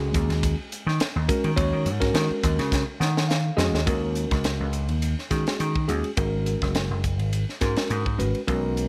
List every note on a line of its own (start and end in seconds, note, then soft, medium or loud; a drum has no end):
0.00 0.55 G#3 medium
0.00 0.55 C#4 medium
0.00 0.55 F#4 medium
0.00 0.55 G#4 medium
0.14 0.28 D#2 medium
0.14 kick medium
0.14 hi-hat pedal medium
0.14 ride medium
0.29 0.54 D#2 medium
0.29 snare soft
0.29 ride medium
0.43 kick medium
0.43 hi-hat pedal medium
0.43 ride medium
0.72 hi-hat pedal medium
0.72 ride medium
0.87 0.98 D#3 medium
0.87 snare soft
1.00 snare loud
1.00 hi-hat pedal medium
1.00 ride medium
1.16 1.27 D#2 medium
1.29 1.50 G#3 medium
1.29 1.50 C#4 medium
1.29 1.50 F#4 medium
1.29 1.50 A#4 medium
1.29 kick medium
1.29 hi-hat pedal medium
1.29 ride medium
1.44 1.56 D#3 medium
1.44 ride medium
1.56 1.71 D#2 medium
1.56 1.88 G#3 medium
1.56 1.88 C#4 medium
1.56 1.88 F#4 medium
1.56 1.88 C#5 medium
1.56 kick loud
1.56 hi-hat pedal medium
1.56 ride medium
1.73 1.87 D#3 medium
1.85 2.10 G#2 medium
1.85 hi-hat pedal medium
1.85 ride medium
2.00 2.83 G#3 medium
2.00 2.83 C#4 medium
2.00 2.83 F#4 medium
2.00 2.83 A#4 medium
2.00 kick medium
2.00 snare soft
2.00 ride medium
2.14 2.28 D#3 medium
2.14 snare loud
2.14 hi-hat pedal medium
2.14 ride medium
2.30 muted slap bass stroke soft
2.44 2.57 D#2 medium
2.44 kick medium
2.44 hi-hat pedal medium
2.44 ride medium
2.59 2.83 C#3 loud
2.59 snare soft
2.59 ride medium
2.72 kick medium
2.72 snare medium
2.72 hi-hat pedal medium
3.00 3.49 D#3 medium
3.00 3.27 F#5 medium
3.00 snare medium
3.00 hi-hat pedal medium
3.17 snare medium
3.29 3.56 F5 medium
3.29 snare medium
3.29 hi-hat pedal medium
3.57 3.72 F2 medium
3.57 3.79 G#3 medium
3.57 3.79 C#4 medium
3.57 3.79 F#4 medium
3.57 3.79 G#4 medium
3.57 3.84 D#5 medium
3.57 snare loud
3.57 hi-hat pedal medium
3.73 3.85 D#2 medium
3.73 snare medium
3.86 4.25 D#2 medium
3.86 4.69 G#3 medium
3.86 4.69 C#4 medium
3.86 4.69 F#4 medium
3.86 4.70 A#4 medium
3.86 kick medium
3.86 hi-hat pedal medium
3.86 ride medium
4.15 hi-hat pedal medium
4.15 ride medium
4.31 4.56 C#2 medium
4.31 kick medium
4.31 snare soft
4.31 ride medium
4.44 snare loud
4.44 hi-hat pedal medium
4.44 ride medium
4.60 4.90 C#2 medium
4.73 hi-hat pedal medium
4.73 ride medium
4.89 5.14 D#2 medium
4.89 ride medium
5.02 hi-hat pedal medium
5.02 ride medium
5.19 snare soft
5.30 5.44 D#3 medium
5.30 5.73 G#3 medium
5.30 5.73 C#4 medium
5.30 5.73 F#4 medium
5.30 5.73 G#4 medium
5.30 kick medium
5.30 snare soft
5.30 hi-hat pedal medium
5.30 ride medium
5.47 snare loud
5.47 ride medium
5.60 5.90 D#3 medium
5.60 hi-hat pedal medium
5.60 ride medium
5.75 kick medium
5.88 6.02 D#2 medium
5.88 6.10 G#3 medium
5.88 6.09 C#4 medium
5.88 6.09 F#4 medium
5.88 6.10 G#4 medium
5.88 hi-hat pedal medium
5.88 ride medium
6.04 ride medium
6.17 6.55 G#1 medium
6.17 7.00 G#3 medium
6.17 7.00 C#4 medium
6.17 7.00 F#4 medium
6.17 7.00 A#4 medium
6.17 kick loud
6.17 hi-hat pedal medium
6.17 ride medium
6.46 hi-hat pedal medium
6.46 ride medium
6.62 6.86 F#1 medium
6.62 kick medium
6.62 snare soft
6.75 snare loud
6.75 hi-hat pedal medium
6.75 ride medium
6.90 7.19 F#1 medium
7.04 kick medium
7.04 hi-hat pedal medium
7.04 ride medium
7.19 7.44 G#1 medium
7.19 ride medium
7.33 hi-hat pedal medium
7.33 ride medium
7.49 snare soft
7.61 7.75 G#2 medium
7.61 8.03 G#3 medium
7.61 8.03 C#4 medium
7.61 8.03 F#4 medium
7.61 8.03 A#4 medium
7.61 kick medium
7.61 snare soft
7.61 hi-hat pedal medium
7.61 ride medium
7.76 snare loud
7.76 ride medium
7.90 8.20 G#2 loud
7.90 hi-hat pedal medium
7.90 ride medium
8.06 kick medium
8.18 8.32 G#1 medium
8.18 8.40 G#3 medium
8.18 8.40 C#4 medium
8.18 8.40 F#4 medium
8.18 8.40 B4 medium
8.18 hi-hat pedal medium
8.18 ride medium
8.35 ride soft
8.47 8.86 B1 medium
8.47 8.88 G#3 medium
8.47 8.88 C#4 medium
8.47 8.88 F#4 medium
8.47 8.88 A#4 medium
8.47 kick loud
8.47 hi-hat pedal medium
8.47 ride medium
8.77 hi-hat pedal medium
8.77 ride medium